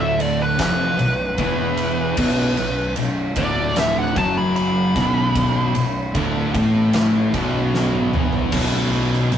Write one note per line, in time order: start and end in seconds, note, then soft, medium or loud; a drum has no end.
0.00 0.55 D1 loud
0.00 0.58 D2 medium
0.00 0.58 D3 loud
0.00 0.19 E5 medium
0.20 0.40 D5 medium
0.20 ride medium
0.42 0.59 B4 medium
0.58 0.96 F1 loud
0.58 0.97 F2 loud
0.58 0.98 F3 loud
0.58 2.94 B4 loud
0.58 kick loud
0.58 snare loud
0.58 ride loud
0.98 1.36 B0 medium
0.98 1.30 B1 medium
0.98 ride medium
1.38 2.14 E1 loud
1.38 2.16 E2 medium
1.38 2.17 E3 loud
1.38 kick loud
1.38 ride loud
1.77 ride medium
2.17 2.55 B0 medium
2.17 2.56 B1 loud
2.17 2.56 B2 loud
2.17 kick loud
2.17 crash loud
2.57 2.95 B0 medium
2.57 2.89 B1 medium
2.57 ride medium
2.96 3.34 B0 medium
2.96 3.29 B1 medium
2.96 ride loud
3.36 4.12 D1 loud
3.36 4.15 D2 loud
3.36 4.16 D3 loud
3.36 3.76 D5 loud
3.36 kick loud
3.36 ride medium
3.76 3.97 E5 loud
3.76 snare loud
3.76 ride loud
3.98 4.17 F#5 medium
4.16 4.92 F#1 loud
4.16 4.94 F#2 medium
4.16 4.95 F#3 loud
4.16 4.36 A5 medium
4.16 kick loud
4.16 ride medium
4.38 4.55 B5 medium
4.56 6.90 B5 loud
4.56 ride loud
4.96 5.71 B0 medium
4.96 5.74 B1 medium
4.96 5.74 B2 loud
4.96 kick loud
4.96 snare soft
4.96 ride medium
5.36 kick loud
5.36 ride loud
5.75 6.12 B0 medium
5.75 6.07 B1 medium
5.75 ride medium
6.15 6.52 D1 loud
6.15 6.53 D2 medium
6.15 6.54 D3 loud
6.15 kick loud
6.15 ride loud
6.54 7.30 A1 medium
6.54 7.32 A2 medium
6.54 7.33 A3 medium
6.54 kick loud
6.54 ride medium
6.93 snare loud
6.93 ride loud
7.34 8.09 B0 loud
7.34 8.12 B1 medium
7.34 8.13 B2 loud
7.34 kick loud
7.34 ride medium
7.74 snare medium
7.94 high tom medium
8.13 8.50 E1 loud
8.13 8.52 E2 medium
8.13 8.52 E3 medium
8.13 mid tom medium
8.33 floor tom medium
8.52 9.28 B0 medium
8.52 9.31 B1 medium
8.52 9.31 B2 loud
8.52 kick loud
8.52 crash loud
8.93 crash medium
9.13 snare soft
9.32 9.38 B0 medium
9.32 9.38 B1 medium
9.32 crash medium